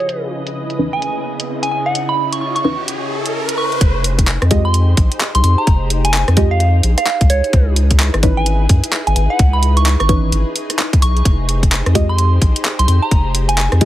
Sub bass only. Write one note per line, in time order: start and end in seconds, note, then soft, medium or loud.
3.81 4.38 F1 loud
4.42 4.95 F2 medium
4.97 5.09 A#1 medium
5.35 5.42 C2 medium
5.44 5.56 F2 loud
5.67 6.24 F1 loud
6.28 6.81 F2 medium
6.83 6.95 A#1 medium
7.21 7.28 C2 medium
7.30 7.42 C#2 medium
7.53 8.10 C#2 loud
8.14 8.67 G#1 medium
8.69 8.81 F#2 medium
9.07 9.14 G#1 medium
9.16 9.28 G#1 loud
9.39 9.96 C#2 loud
10.00 10.32 G#1 medium
10.32 10.44 G#1 medium
11.02 11.22 B1 medium
11.25 11.82 F1 loud
11.86 12.39 F2 medium
12.42 12.53 A#1 medium
12.79 12.86 C2 medium
12.88 13.00 F2 medium
13.11 13.68 F1 loud
13.72 13.85 F2 medium